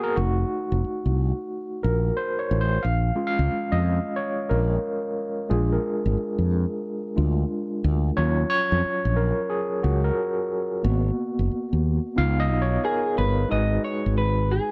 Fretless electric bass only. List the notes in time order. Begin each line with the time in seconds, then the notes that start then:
0.17 F1
0.72 F1
0.84 muted fretless electric bass stroke
1.06 C2
1.84 A#1
2.51 A1
2.84 A#1
3.39 C#2
3.51 muted fretless electric bass stroke
3.72 F2
4.51 A#1
5.51 A#1
6.06 G#1
6.17 muted fretless electric bass stroke
6.39 F2
7.18 D2
7.84 D2
8.18 D#2
8.72 F2
8.84 muted fretless electric bass stroke
9.05 A#1
9.84 C#2
10.84 G#1
11.39 F#1
11.51 muted fretless electric bass stroke
11.73 D#2
12.18 C#2
12.52 B1
13.18 G1
13.52 G#1
14.06 G#1